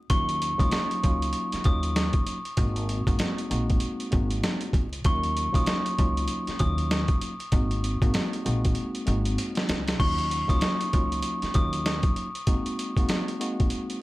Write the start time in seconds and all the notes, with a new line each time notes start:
0.10 D#2 F#3 A#3 C#4 D#4 F4 C#6, kick, closed hi-hat
0.29 closed hi-hat
0.42 closed hi-hat
0.58 C#2 F#3 A#3 C#4 D#4 F4 D#6, kick, closed hi-hat
0.71 snare, closed hi-hat
0.91 closed hi-hat
1.02 C#2 F#3 A#3 C#4 D#4 F4, kick, closed hi-hat
1.22 closed hi-hat
1.33 closed hi-hat
1.52 muted upright bass stroke, snare, closed hi-hat
1.64 D#2 F#3 A#3 C#4 D#4 F4 D#6, kick, closed hi-hat
1.83 closed hi-hat
1.96 snare, closed hi-hat
2.13 kick, closed hi-hat
2.27 closed hi-hat
2.45 closed hi-hat
2.57 G#1 G#3 A#3 C4 D#4 F#4, kick, closed hi-hat
2.76 closed hi-hat
2.89 closed hi-hat
3.07 G#1 G#3 A#3 C4 D#4 F#4, kick, closed hi-hat
3.19 snare, closed hi-hat
3.38 closed hi-hat
3.49 A#1 G#3 A#3 C4 D#4 F#4, closed hi-hat
3.70 kick, closed hi-hat
3.80 closed hi-hat
4.00 closed hi-hat
4.11 G#1 G#3 A#3 C4 D#4 F#4, kick, closed hi-hat
4.31 closed hi-hat
4.43 snare, closed hi-hat
4.61 closed hi-hat
4.73 C#2, kick, closed hi-hat
4.93 closed hi-hat
5.04 D#2 F#3 A#3 C#4 D#4 F4 C#6, kick, closed hi-hat
5.24 closed hi-hat
5.37 closed hi-hat
5.53 C#2 F#3 A#3 C#4 D#4 F4 D#6, kick, closed hi-hat
5.66 snare, closed hi-hat
5.86 closed hi-hat
5.98 C#2 F#3 A#3 C#4 D#4 F4, kick, closed hi-hat
6.17 closed hi-hat
6.28 closed hi-hat
6.47 muted upright bass stroke, snare, closed hi-hat
6.59 D#2 F#3 A#3 C#4 D#4 F4 D#6, kick, closed hi-hat
6.78 closed hi-hat
6.91 snare, closed hi-hat
7.08 kick, closed hi-hat
7.21 closed hi-hat
7.40 closed hi-hat
7.52 G#1 G#3 A#3 C4 D#4 F#4, kick, closed hi-hat
7.71 closed hi-hat
7.84 closed hi-hat
8.02 G#1 G#3 A#3 C4 D#4 F#4, kick, closed hi-hat
8.14 snare, closed hi-hat
8.33 closed hi-hat
8.45 A#1 G#3 A#3 C4 D#4 F#4, closed hi-hat
8.65 kick, closed hi-hat
8.75 closed hi-hat
8.95 closed hi-hat
9.06 G#1 G#3 A#3 C4 D#4 F#4, closed hi-hat
9.25 closed hi-hat
9.38 closed hi-hat
9.55 snare, closed hi-hat
9.69 C#2, snare, closed hi-hat
9.88 snare, closed hi-hat
10.00 D#2 F#3 A#3 C#4 D#4 F4 C#6, kick, crash
10.18 closed hi-hat
10.31 closed hi-hat
10.47 C#2 F#3 A#3 C#4 D#4 F4 D#6, kick, closed hi-hat
10.61 snare, closed hi-hat
10.81 closed hi-hat
10.92 C#2 F#3 A#3 C#4 D#4 F4, kick, closed hi-hat
11.12 closed hi-hat
11.22 closed hi-hat
11.42 muted upright bass stroke, snare, closed hi-hat
11.54 D#2 F#3 A#3 C#4 D#4 F4 D#6, kick, closed hi-hat
11.73 closed hi-hat
11.86 snare, closed hi-hat
12.03 kick, closed hi-hat
12.16 closed hi-hat
12.35 closed hi-hat
12.47 G#3 A#3 C4 D#4 F#4, kick, closed hi-hat
12.66 closed hi-hat
12.79 closed hi-hat
12.97 G#3 A#3 C4 D#4 F#4, kick, closed hi-hat
13.09 snare, closed hi-hat
13.28 closed hi-hat
13.40 G#3 A#3 C4 D#4 F#4, closed hi-hat
13.60 kick, closed hi-hat
13.70 closed hi-hat
13.90 closed hi-hat